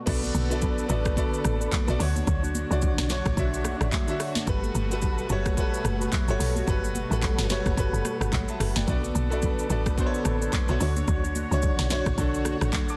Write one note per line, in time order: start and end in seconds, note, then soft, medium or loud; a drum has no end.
0.06 0.31 B1 loud
0.06 1.98 D3 medium
0.06 0.40 B3 medium
0.06 1.98 B3 medium
0.06 0.23 D4 medium
0.06 0.41 F#4 medium
0.06 0.23 A4 medium
0.06 1.98 A4 medium
0.06 0.41 A4 medium
0.06 0.23 B4 loud
0.06 0.42 D5 loud
0.06 kick loud
0.06 crash loud
0.06 low conga medium
0.06 shaker medium
0.23 high conga soft
0.23 shaker medium
0.34 0.82 B1 loud
0.34 high conga medium
0.34 shaker medium
0.49 0.82 B3 medium
0.49 0.87 D4 medium
0.49 0.83 F#4 medium
0.49 0.87 A4 medium
0.49 0.83 A4 medium
0.49 0.87 B4 medium
0.49 0.84 D5 medium
0.49 shaker medium
0.62 kick medium
0.62 low conga medium
0.62 shaker medium
0.78 shaker medium
0.88 1.27 A1 loud
0.88 1.12 B3 loud
0.88 1.15 D4 medium
0.88 1.12 F#4 medium
0.88 1.15 A4 medium
0.88 1.13 A4 medium
0.88 1.15 B4 medium
0.88 1.13 D5 loud
0.88 low conga medium
0.88 shaker loud
1.05 kick loud
1.05 cross-stick loud
1.05 high conga medium
1.05 shaker medium
1.16 1.72 B3 loud
1.16 1.57 D4 medium
1.16 1.72 F#4 medium
1.16 1.57 A4 medium
1.16 1.72 A4 medium
1.16 1.57 B4 loud
1.16 1.73 D5 loud
1.16 kick loud
1.16 shaker medium
1.34 shaker medium
1.44 1.69 A1 medium
1.44 cross-stick medium
1.44 high conga medium
1.44 shaker loud
1.60 1.72 D4 medium
1.60 1.72 A4 medium
1.60 1.72 B4 medium
1.60 shaker medium
1.72 kick loud
1.72 clap loud
1.72 high conga medium
1.72 low conga medium
1.72 shaker medium
1.87 1.98 B1 medium
1.87 1.99 B3 loud
1.87 1.99 F#4 medium
1.87 2.00 A4 medium
1.87 2.01 D5 loud
1.87 shaker medium
1.98 2.23 D2 loud
1.98 2.54 D3 loud
1.98 4.45 D3 medium
1.98 4.45 D4 medium
1.98 2.15 D4 medium
1.98 2.55 D4 medium
1.98 8.83 F#4 medium
1.98 2.16 F#4 medium
1.98 2.55 F#4 medium
1.98 2.16 C#5 medium
1.98 2.56 C#5 loud
1.98 open hi-hat medium
1.98 shaker medium
2.16 high conga medium
2.16 shaker medium
2.27 2.65 D2 loud
2.27 2.43 D4 medium
2.27 2.43 F#4 medium
2.27 2.43 C#5 loud
2.27 kick loud
2.27 low conga medium
2.27 shaker medium
2.43 high conga soft
2.43 shaker soft
2.55 high conga medium
2.55 shaker medium
2.70 2.94 C#2 loud
2.70 3.02 D3 medium
2.70 3.07 D4 medium
2.70 3.03 D4 medium
2.70 3.07 F#4 medium
2.70 3.03 F#4 medium
2.70 3.07 C#5 medium
2.70 3.04 D5 loud
2.70 shaker medium
2.82 kick loud
2.82 low conga medium
2.82 shaker medium
2.98 3.22 B1 medium
2.98 snare medium
2.98 shaker medium
3.09 3.32 D3 medium
3.09 3.35 D4 medium
3.09 3.33 D4 medium
3.09 3.35 F#4 medium
3.09 3.33 F#4 medium
3.09 3.36 C#5 medium
3.09 3.34 C#5 loud
3.09 snare medium
3.09 low conga medium
3.09 shaker loud
3.26 3.36 A1 medium
3.26 kick loud
3.26 cross-stick loud
3.26 high conga medium
3.26 shaker medium
3.36 3.75 B1 loud
3.36 3.92 D3 loud
3.36 3.77 D4 loud
3.36 3.92 D4 medium
3.36 3.77 F#4 medium
3.36 3.93 F#4 medium
3.36 3.77 C#5 loud
3.36 3.93 E5 loud
3.36 kick loud
3.36 shaker medium
3.54 shaker medium
3.64 cross-stick medium
3.64 high conga medium
3.64 shaker loud
3.81 3.91 A1 medium
3.81 3.92 D4 medium
3.81 3.92 F#4 medium
3.81 3.92 C#5 medium
3.81 cross-stick loud
3.81 shaker medium
3.92 kick loud
3.92 clap medium
3.92 high conga medium
3.92 low conga medium
3.92 shaker medium
4.07 4.40 D3 loud
4.07 4.40 D4 medium
4.07 4.41 F#4 medium
4.07 4.41 E5 loud
4.07 shaker medium
4.19 4.36 D4 medium
4.19 4.36 F#4 medium
4.19 4.36 C#5 medium
4.19 cross-stick medium
4.19 open hi-hat medium
4.19 shaker medium
4.35 snare medium
4.35 high conga medium
4.35 shaker medium
4.46 4.71 G1 loud
4.46 8.84 B2 medium
4.46 4.81 G3 loud
4.46 8.84 A3 medium
4.46 4.63 F#4 medium
4.46 4.81 F#4 medium
4.46 4.63 A4 medium
4.46 4.82 A4 medium
4.46 4.63 B4 loud
4.46 4.82 B4 loud
4.46 kick loud
4.46 low conga medium
4.46 shaker medium
4.63 high conga medium
4.63 shaker medium
4.75 5.22 G1 loud
4.75 high conga medium
4.75 shaker medium
4.90 5.23 G3 medium
4.90 5.27 F#4 medium
4.90 5.23 F#4 medium
4.90 5.27 A4 medium
4.90 5.24 A4 medium
4.90 5.27 B4 medium
4.90 5.24 B4 loud
4.90 shaker medium
5.02 kick medium
5.02 low conga medium
5.02 shaker medium
5.18 shaker medium
5.29 5.68 F#1 loud
5.29 5.52 G3 medium
5.29 5.56 F#4 medium
5.29 5.53 F#4 medium
5.29 5.56 A4 medium
5.29 5.53 A4 medium
5.29 5.56 B4 loud
5.29 5.54 C#5 loud
5.29 low conga medium
5.29 shaker loud
5.46 kick loud
5.46 cross-stick medium
5.46 high conga medium
5.46 shaker medium
5.57 6.12 G3 medium
5.57 5.97 F#4 loud
5.57 6.13 F#4 medium
5.57 5.97 A4 medium
5.57 6.13 A4 medium
5.57 5.97 B4 loud
5.57 6.14 B4 loud
5.57 kick loud
5.57 shaker medium
5.74 shaker medium
5.85 6.09 F#1 loud
5.85 cross-stick loud
5.85 high conga medium
5.85 shaker loud
6.01 6.12 F#4 medium
6.01 6.12 A4 medium
6.01 6.13 B4 medium
6.01 shaker medium
6.12 kick loud
6.12 clap loud
6.12 high conga medium
6.12 low conga medium
6.12 shaker medium
6.28 6.38 G1 medium
6.28 6.60 G3 medium
6.28 6.61 F#4 medium
6.28 6.61 A4 medium
6.28 6.62 C#5 loud
6.28 shaker medium
6.39 6.64 B1 medium
6.39 6.56 F#4 medium
6.39 6.56 A4 medium
6.39 6.56 B4 medium
6.39 open hi-hat medium
6.39 shaker medium
6.56 high conga medium
6.56 shaker medium
6.67 7.05 G1 loud
6.67 7.01 G3 medium
6.67 6.83 F#4 medium
6.67 7.02 F#4 medium
6.67 6.83 A4 medium
6.67 7.02 A4 medium
6.67 6.83 B4 loud
6.67 7.02 B4 loud
6.67 kick loud
6.67 low conga medium
6.67 shaker medium
6.83 high conga medium
6.83 shaker medium
6.95 high conga medium
6.95 shaker medium
7.10 7.35 A1 loud
7.10 7.43 G3 medium
7.10 7.47 F#4 medium
7.10 7.43 F#4 medium
7.10 7.47 A4 medium
7.10 7.44 A4 medium
7.10 7.47 B4 medium
7.10 7.44 B4 loud
7.10 shaker medium
7.22 kick loud
7.22 clap medium
7.22 low conga medium
7.22 shaker medium
7.38 7.62 G1 medium
7.38 snare medium
7.38 shaker medium
7.49 7.72 G3 medium
7.49 7.76 F#4 medium
7.49 7.73 F#4 medium
7.49 7.76 A4 medium
7.49 7.73 A4 medium
7.49 7.76 B4 medium
7.49 7.74 C#5 loud
7.49 snare medium
7.49 low conga medium
7.49 shaker loud
7.66 7.76 F#1 medium
7.66 kick loud
7.66 cross-stick medium
7.66 high conga medium
7.66 shaker medium
7.77 7.91 G1 loud
7.77 8.32 G3 medium
7.77 8.17 F#4 loud
7.77 8.33 F#4 medium
7.77 8.17 A4 medium
7.77 8.33 A4 medium
7.77 8.17 B4 loud
7.77 8.34 B4 loud
7.77 kick loud
7.77 shaker loud
7.93 8.03 F#1 loud
7.93 shaker medium
8.05 cross-stick medium
8.05 high conga medium
8.05 shaker loud
8.21 8.31 G1 medium
8.21 8.32 F#4 medium
8.21 8.32 A4 medium
8.21 8.33 B4 medium
8.21 cross-stick loud
8.21 shaker medium
8.32 8.46 A1 medium
8.32 8.48 C#5 medium
8.32 8.48 F#5 medium
8.32 kick loud
8.32 clap loud
8.32 high conga medium
8.32 low conga medium
8.32 shaker medium
8.48 8.75 E5 medium
8.48 8.75 A5 medium
8.48 shaker medium
8.60 8.74 F#1 loud
8.60 8.76 F#4 medium
8.60 8.76 A4 medium
8.60 8.76 B4 medium
8.60 cross-stick loud
8.60 open hi-hat medium
8.60 shaker medium
8.76 8.86 F#1 medium
8.76 8.88 D5 medium
8.76 9.03 G5 medium
8.76 snare medium
8.76 high conga medium
8.76 shaker medium
8.87 9.12 B1 loud
8.87 12.97 D3 medium
8.87 9.21 B3 medium
8.87 10.79 B3 medium
8.87 9.03 D4 medium
8.87 9.22 F#4 medium
8.87 9.04 A4 medium
8.87 10.78 A4 medium
8.87 9.22 A4 medium
8.87 9.04 B4 loud
8.87 9.23 D5 loud
8.87 kick loud
8.87 low conga medium
8.87 shaker medium
9.03 high conga medium
9.03 shaker soft
9.15 9.63 B1 loud
9.15 high conga medium
9.15 shaker medium
9.30 9.63 B3 medium
9.30 9.67 D4 medium
9.30 9.63 F#4 medium
9.30 9.67 A4 medium
9.30 9.64 A4 medium
9.30 9.68 B4 medium
9.30 9.64 D5 loud
9.30 shaker medium
9.42 kick medium
9.42 low conga medium
9.42 shaker medium
9.59 shaker medium
9.69 10.08 A1 loud
9.69 9.93 B3 medium
9.69 9.96 D4 medium
9.69 9.93 F#4 medium
9.69 9.96 A4 medium
9.69 9.94 A4 medium
9.69 9.96 B4 medium
9.69 9.94 D5 loud
9.69 low conga medium
9.69 shaker loud
9.86 kick loud
9.86 cross-stick medium
9.86 high conga medium
9.86 shaker medium
9.97 10.52 B3 medium
9.97 10.37 D4 loud
9.97 10.53 F#4 medium
9.97 10.37 A4 medium
9.97 10.53 A4 medium
9.97 10.38 B4 loud
9.97 10.06 C5 medium
9.97 kick loud
9.97 shaker medium
10.06 10.57 C#5 loud
10.14 shaker medium
10.25 10.49 A1 medium
10.25 cross-stick loud
10.25 high conga medium
10.25 shaker loud
10.41 10.53 D4 medium
10.41 10.53 A4 medium
10.41 10.53 B4 medium
10.41 shaker medium
10.53 kick medium
10.53 clap medium
10.53 high conga medium
10.53 low conga medium
10.53 shaker medium
10.68 10.79 B1 medium
10.68 10.80 B3 loud
10.68 10.80 F#4 medium
10.68 10.81 A4 medium
10.68 10.81 C#5 loud
10.68 shaker medium
10.79 11.04 D2 loud
10.79 11.35 D3 medium
10.79 10.96 D4 medium
10.79 11.35 D4 medium
10.79 12.97 F#4 medium
10.79 10.96 F#4 medium
10.79 11.36 F#4 medium
10.79 12.97 C#5 medium
10.79 10.96 C#5 medium
10.79 11.36 C#5 loud
10.79 open hi-hat medium
10.79 shaker medium
10.96 high conga medium
10.96 shaker medium
11.08 11.45 D2 loud
11.08 11.24 D4 medium
11.08 11.24 F#4 medium
11.08 11.24 C#5 loud
11.08 kick loud
11.08 low conga medium
11.08 shaker medium
11.24 high conga medium
11.24 shaker medium
11.35 high conga medium
11.35 shaker medium
11.51 11.75 C#2 loud
11.51 11.83 D3 medium
11.51 11.88 D4 medium
11.51 11.84 D4 medium
11.51 11.88 F#4 medium
11.51 11.84 F#4 medium
11.51 11.88 C#5 medium
11.51 11.85 C#5 loud
11.51 shaker soft
11.62 kick medium
11.62 low conga medium
11.62 shaker medium
11.79 12.03 B1 medium
11.79 snare medium
11.79 shaker soft
11.90 12.13 D3 medium
11.90 12.16 D4 medium
11.90 12.13 D4 medium
11.90 12.16 F#4 medium
11.90 12.14 F#4 medium
11.90 12.16 C#5 medium
11.90 12.14 C#5 loud
11.90 snare medium
11.90 low conga medium
11.90 shaker loud
12.06 12.16 A1 medium
12.06 kick loud
12.06 cross-stick medium
12.06 high conga medium
12.06 shaker medium
12.17 12.55 B1 loud
12.17 12.73 D3 loud
12.17 12.57 D4 medium
12.17 12.73 D4 medium
12.17 12.58 F#4 medium
12.17 12.74 F#4 medium
12.17 12.74 A4 loud
12.17 12.58 C#5 loud
12.17 kick loud
12.17 shaker loud
12.34 shaker medium
12.45 cross-stick medium
12.45 high conga medium
12.45 shaker loud
12.61 12.71 A1 medium
12.61 12.73 D4 medium
12.61 12.73 F#4 medium
12.61 12.73 C#5 medium
12.61 cross-stick loud
12.61 shaker medium
12.73 kick loud
12.73 clap loud
12.73 high conga medium
12.73 low conga medium
12.73 shaker medium
12.89 12.97 A5 medium
12.89 12.97 D6 medium
12.89 shaker medium